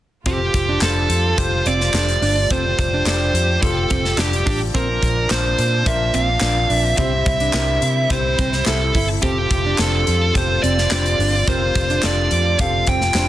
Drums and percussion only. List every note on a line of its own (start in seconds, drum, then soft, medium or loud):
0.26 kick loud
0.26 closed hi-hat medium
0.54 kick medium
0.54 closed hi-hat medium
0.81 snare medium
0.81 clap medium
0.81 closed hi-hat medium
1.10 closed hi-hat medium
1.38 kick medium
1.38 closed hi-hat medium
1.66 closed hi-hat medium
1.81 snare soft
1.94 snare medium
1.94 clap medium
1.94 closed hi-hat medium
2.09 closed hi-hat medium
2.22 open hi-hat medium
2.50 kick loud
2.50 closed hi-hat medium
2.79 kick medium
2.79 closed hi-hat medium
3.06 snare medium
3.06 clap medium
3.06 closed hi-hat medium
3.35 closed hi-hat medium
3.63 kick medium
3.63 closed hi-hat medium
3.90 kick medium
3.90 closed hi-hat medium
4.05 snare soft
4.18 snare loud
4.18 clap medium
4.18 closed hi-hat medium
4.33 closed hi-hat medium
4.47 kick medium
4.47 open hi-hat medium
4.75 kick loud
4.75 closed hi-hat medium
5.03 kick medium
5.03 closed hi-hat medium
5.30 snare loud
5.30 clap medium
5.30 closed hi-hat medium
5.58 closed hi-hat medium
5.86 kick medium
5.86 closed hi-hat medium
6.14 closed hi-hat medium
6.41 snare loud
6.41 clap medium
6.41 closed hi-hat medium
6.70 open hi-hat medium
6.98 kick medium
6.98 closed hi-hat medium
7.26 kick medium
7.26 closed hi-hat medium
7.40 closed hi-hat soft
7.53 snare medium
7.53 clap medium
7.53 closed hi-hat medium
7.82 closed hi-hat medium
8.10 kick medium
8.10 closed hi-hat medium
8.39 kick medium
8.39 closed hi-hat medium
8.53 snare soft
8.66 snare medium
8.66 clap medium
8.66 closed hi-hat medium
8.95 kick medium
8.95 open hi-hat medium
9.22 kick loud
9.22 closed hi-hat medium
9.51 kick medium
9.51 closed hi-hat medium
9.78 snare loud
9.78 clap medium
9.78 closed hi-hat medium
10.07 closed hi-hat medium
10.35 kick medium
10.35 closed hi-hat medium
10.64 closed hi-hat medium
10.78 snare soft
10.91 snare loud
10.91 clap medium
10.91 closed hi-hat medium
11.06 closed hi-hat medium
11.20 open hi-hat medium
11.48 kick loud
11.48 closed hi-hat medium
11.75 kick medium
11.75 closed hi-hat medium
11.90 closed hi-hat medium
12.03 snare medium
12.03 clap medium
12.03 closed hi-hat medium
12.31 closed hi-hat medium
12.59 kick medium
12.59 closed hi-hat medium
12.87 kick medium
12.87 closed hi-hat medium
13.01 snare soft
13.14 snare loud
13.14 clap medium
13.14 closed hi-hat medium